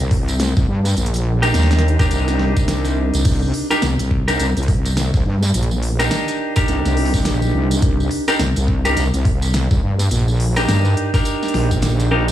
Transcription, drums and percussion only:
0.00 tambourine
0.11 kick, open hi-hat
0.28 closed hi-hat, tambourine
0.40 snare, closed hi-hat, tambourine
0.57 kick, snare, tambourine
0.85 snare, closed hi-hat, tambourine
0.97 closed hi-hat, tambourine
1.06 closed hi-hat
1.14 closed hi-hat, tambourine
1.16 closed hi-hat
1.43 closed hi-hat, tambourine
1.54 snare, closed hi-hat, tambourine
1.60 snare
1.63 snare
1.71 snare, closed hi-hat, tambourine
1.73 snare
1.79 snare, closed hi-hat
1.88 closed hi-hat
1.99 kick, closed hi-hat, tambourine
2.11 closed hi-hat, tambourine
2.28 snare, closed hi-hat, tambourine
2.39 snare
2.57 kick, closed hi-hat, tambourine
2.68 snare, closed hi-hat, tambourine
2.85 closed hi-hat, tambourine
3.14 closed hi-hat, tambourine
3.25 kick, closed hi-hat, crash, tambourine
3.42 tambourine
3.54 open hi-hat
3.71 closed hi-hat, tambourine
3.82 snare, closed hi-hat, tambourine
3.99 closed hi-hat, tambourine
4.11 kick
4.28 closed hi-hat, tambourine
4.39 closed hi-hat, tambourine
4.57 closed hi-hat, tambourine
4.63 closed hi-hat
4.68 kick, closed hi-hat, open hi-hat
4.77 closed hi-hat
4.85 closed hi-hat, tambourine
4.97 snare, closed hi-hat, tambourine
5.14 kick, snare, tambourine
5.17 snare
5.20 snare
5.23 snare
5.25 snare
5.30 snare
5.34 snare
5.38 snare
5.43 snare, closed hi-hat, tambourine
5.48 closed hi-hat
5.54 closed hi-hat, tambourine
5.63 closed hi-hat
5.71 tambourine
5.83 open hi-hat
6.00 closed hi-hat, tambourine
6.11 snare, closed hi-hat, tambourine
6.28 closed hi-hat, tambourine
6.56 kick, closed hi-hat, tambourine
6.68 closed hi-hat, tambourine
6.85 snare, closed hi-hat, tambourine
6.97 open hi-hat
7.05 open hi-hat
7.14 kick, closed hi-hat, open hi-hat, tambourine
7.20 open hi-hat
7.25 snare, closed hi-hat, tambourine
7.42 tambourine
7.71 closed hi-hat, tambourine
7.82 kick, closed hi-hat, tambourine
8.00 tambourine
8.11 open hi-hat
8.28 closed hi-hat, tambourine
8.39 snare, closed hi-hat, tambourine
8.56 closed hi-hat, tambourine
8.68 kick
8.85 closed hi-hat, tambourine
8.97 closed hi-hat, tambourine
9.14 closed hi-hat, tambourine
9.25 kick, open hi-hat
9.42 closed hi-hat, tambourine
9.54 snare, closed hi-hat, tambourine
9.71 kick, snare, tambourine
9.99 snare, closed hi-hat, tambourine
10.11 closed hi-hat, tambourine
10.28 tambourine
10.40 open hi-hat
10.56 closed hi-hat, tambourine
10.69 snare, closed hi-hat, tambourine
10.85 tambourine
10.97 closed hi-hat
11.14 kick, closed hi-hat, tambourine
11.25 closed hi-hat, tambourine
11.43 snare, tambourine
11.48 closed hi-hat
11.54 snare, open hi-hat
11.71 kick, closed hi-hat, tambourine
11.82 snare, closed hi-hat, tambourine
12.00 closed hi-hat, tambourine
12.28 closed hi-hat, tambourine

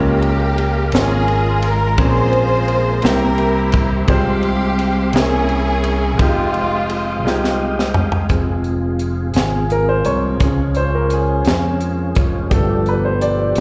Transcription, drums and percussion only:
0.22 ride
0.58 ride
0.92 snare, ride
1.28 ride
1.62 ride
1.98 kick, ride
2.33 ride
2.68 ride
3.02 snare, ride
3.38 ride
3.72 kick, ride
4.08 kick, ride
4.43 ride
4.79 ride
5.13 snare, ride
5.49 ride
5.84 ride
6.19 kick, ride
6.54 ride
6.90 ride
7.27 snare
7.44 snare
7.79 snare
7.94 floor tom
8.12 floor tom
8.29 kick, closed hi-hat
8.64 closed hi-hat
8.99 closed hi-hat
9.34 snare, closed hi-hat
9.70 closed hi-hat
10.05 closed hi-hat
10.40 kick, closed hi-hat
10.75 closed hi-hat
11.10 closed hi-hat
11.45 snare, closed hi-hat
11.80 closed hi-hat
12.15 kick, closed hi-hat
12.51 kick, closed hi-hat
12.86 closed hi-hat
13.21 closed hi-hat
13.55 closed hi-hat

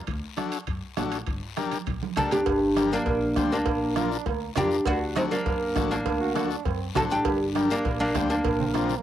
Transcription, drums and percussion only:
0.07 bombo low, high timbale, long guiro
0.37 bombo rim, high conga, high timbale, short guiro
0.52 high timbale, short guiro
0.67 bombo low, high timbale, long guiro
0.97 bombo rim, high conga, high timbale, low timbale, short guiro
1.12 high timbale, short guiro
1.27 bombo low, high timbale, long guiro
1.57 bombo rim, high conga, high timbale, short guiro
1.72 high conga, high timbale, short guiro
1.86 bombo low, high conga, high timbale, long guiro
2.03 high conga
2.16 bombo low, bombo rim, low conga, high timbale, short guiro
2.31 low conga, high timbale, short guiro
2.46 bombo low, cowbell, long guiro
2.77 bombo rim, cowbell, high conga, short guiro
2.92 high conga, short guiro
3.06 bombo low, cowbell, long guiro
3.36 bombo low, bombo rim, cowbell, high conga, short guiro
3.52 short guiro
3.66 bombo low, cowbell, long guiro
3.96 bombo rim, cowbell, high conga, short guiro
4.12 short guiro
4.26 bombo low, cowbell, long guiro
4.55 bombo rim, cowbell, high conga, low conga, short guiro
4.71 short guiro
4.86 bombo low, cowbell, long guiro
5.16 bombo rim, cowbell, high conga, short guiro
5.31 high conga, short guiro
5.46 bombo low, cowbell, long guiro
5.76 bombo low, bombo rim, cowbell, high conga, short guiro
5.91 short guiro
6.06 bombo low, cowbell, long guiro
6.36 bombo rim, cowbell, high conga, short guiro
6.50 short guiro
6.65 bombo low, cowbell, long guiro
6.95 bombo low, bombo rim, cowbell, high conga, low conga, short guiro
7.10 short guiro
7.25 bombo low, cowbell, long guiro
7.55 bombo rim, cowbell, high conga, short guiro
7.70 short guiro
7.85 bombo low, cowbell, long guiro
8.01 bombo rim
8.15 bombo low, bombo rim, cowbell, high conga, short guiro
8.30 short guiro
8.44 bombo low, cowbell, long guiro
8.60 low conga
8.74 bombo rim, cowbell, high conga, short guiro
8.89 high conga, short guiro

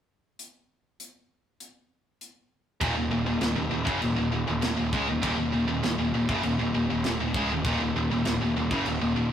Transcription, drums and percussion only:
0.39 closed hi-hat
1.00 closed hi-hat
1.60 closed hi-hat
2.21 closed hi-hat
2.81 kick, china
3.41 snare, china
3.87 kick
4.02 china
4.62 snare, china
4.93 kick
5.23 kick, china
5.83 snare, china
6.29 kick
6.43 china
7.04 snare, china
7.34 kick
7.65 kick, china
8.25 snare, china
8.71 kick
8.86 china

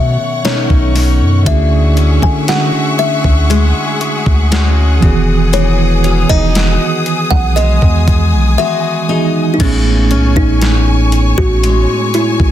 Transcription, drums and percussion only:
0.45 snare, closed hi-hat
0.70 kick
0.96 open hi-hat
1.46 kick, closed hi-hat
1.97 closed hi-hat
2.22 kick
2.48 snare, closed hi-hat
2.99 closed hi-hat
3.24 kick
3.51 closed hi-hat
4.01 closed hi-hat
4.26 kick
4.52 snare, closed hi-hat
5.03 kick
5.54 closed hi-hat
6.04 closed hi-hat
6.30 kick
6.55 snare, closed hi-hat
7.06 closed hi-hat
7.31 kick
7.57 closed hi-hat
7.82 kick
8.08 kick, closed hi-hat
9.60 kick, closed hi-hat, crash
10.11 closed hi-hat
10.36 kick
10.62 snare, closed hi-hat
11.12 closed hi-hat
11.38 kick
11.64 closed hi-hat
12.14 closed hi-hat
12.40 kick

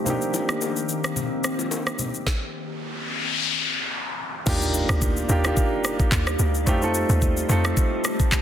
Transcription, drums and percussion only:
0.06 low conga, shaker
0.22 shaker
0.34 low bongo, shaker
0.49 cross-stick, shaker
0.61 high bongo, shaker
0.76 shaker
0.89 shaker
1.04 cross-stick, shaker
1.16 low conga, shaker
1.44 cross-stick, shaker
1.59 low bongo, shaker
1.71 high bongo, shaker
1.87 cross-stick, shaker
1.99 low conga, shaker
2.14 shaker
2.27 kick, snare
4.47 kick, crash, shaker
4.62 shaker
4.74 shaker
4.89 cross-stick, shaker
5.02 kick, shaker
5.17 shaker
5.29 shaker
5.44 cross-stick, shaker
5.57 kick, shaker
5.84 cross-stick, shaker
6.00 kick, shaker
6.12 kick, clap, shaker
6.27 cross-stick, shaker
6.39 shaker
6.55 shaker
6.67 kick, shaker
6.82 shaker
6.94 shaker
7.09 shaker
7.22 kick, shaker
7.37 shaker
7.49 shaker
7.65 cross-stick, shaker
7.77 kick, shaker
8.04 cross-stick, shaker
8.20 kick, shaker
8.32 kick, clap, shaker

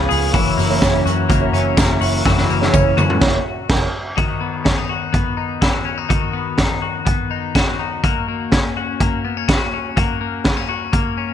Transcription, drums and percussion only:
0.10 hi-hat pedal, open hi-hat, tambourine
0.34 kick, hi-hat pedal, open hi-hat, tambourine
0.58 hi-hat pedal, open hi-hat, tambourine
0.81 kick, snare, hi-hat pedal, open hi-hat, tambourine
1.06 hi-hat pedal, open hi-hat, tambourine
1.30 kick, hi-hat pedal, open hi-hat, tambourine
1.54 hi-hat pedal, open hi-hat, tambourine
1.77 kick, snare, hi-hat pedal, open hi-hat, tambourine
2.02 hi-hat pedal, open hi-hat, tambourine
2.26 kick, snare, tambourine
2.38 snare
2.50 tambourine
2.62 snare
2.74 kick, high tom, tambourine
2.98 high tom, tambourine
3.10 mid tom
3.21 kick, snare, crash
3.69 kick, snare, crash
4.18 kick, closed hi-hat
4.65 kick, snare, closed hi-hat
5.14 kick, closed hi-hat
5.62 kick, snare, closed hi-hat
6.10 kick, closed hi-hat
6.58 kick, snare, closed hi-hat
7.06 kick, closed hi-hat
7.55 kick, snare, closed hi-hat
8.04 kick, closed hi-hat
8.52 kick, snare, closed hi-hat
9.00 kick, closed hi-hat
9.49 kick, snare, closed hi-hat
9.97 kick, closed hi-hat
10.44 kick, snare, closed hi-hat
10.93 kick, closed hi-hat

